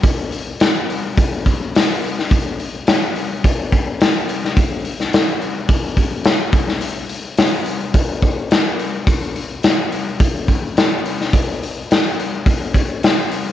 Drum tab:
HH |o-o-o-o-o-o-o-o-|o-o-o-o-o-o-o-o-|o-o-o-o-o-o-o-o-|o-o-o-o-o-o-o-o-|
SD |----o-------o--o|----o-------o--o|---oo-------o--o|----o-------o---|
BD |o-------o-o-----|o-------o-o-----|o-------o-o---o-|--------o-o-----|

HH |o-o-o-o-o-o-o-o-|o-o-o-o-o-o-o-o-|
SD |----o-------o--o|----o-------o---|
BD |o-------o-o-----|o-------o-o-----|